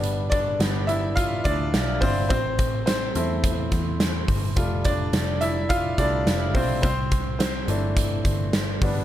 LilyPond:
<<
  \new Staff \with { instrumentName = "Upright piano" } { \time 4/4 \key c \major \tempo 4 = 106 r8 <d' d''>4 <e' e''>8 <f' f''>8 <d' d''>4 <c' c''>8 | <c' c''>4 <c' c''>2~ <c' c''>8 r8 | r8 <d' d''>4 <e' e''>8 <f' f''>8 <d' d''>4 <c' c''>8 | <c' c''>4 <c' c''>2~ <c' c''>8 r8 | }
  \new Staff \with { instrumentName = "Upright piano" } { \time 4/4 \key c \major <g b d'>4 <g b d'>8 r2 r8 | r4. <a c' e'>2~ <a c' e'>8 | <g a f'>8 r2 <g a f'>8 r4 | r4. <e a d'>2 <g b d'>8 | }
  \new Staff \with { instrumentName = "Picked electric bass" } { \clef bass \time 4/4 \key c \major g,,4 g,,4. d,8 b,,8 g,,8 | a,,4. e,4 e,4 g,,8 | f,,4 f,,4. c,8 f,,8 b,,8 | c,4. g,,4 g,,4 g,,8 | }
  \new DrumStaff \with { instrumentName = "Drums" } \drummode { \time 4/4 hh8 <hh bd>8 <hh sn>8 hh8 <hh bd>8 <hh bd>8 <hh sn>8 <hho bd>8 | <hh bd>8 <hh bd>8 <hh sn>8 hh8 <hh bd>8 <hh bd sn>8 <hh sn>8 <hho bd>8 | <hh bd>8 <hh bd>8 <hh sn>8 hh8 <hh bd>8 <hh bd sn>8 <hh sn>8 <hho bd>8 | <hh bd>8 <hh bd>8 <hh sn>8 hh8 <hh bd>8 <hh bd>8 <hh sn>8 <hho bd>8 | }
>>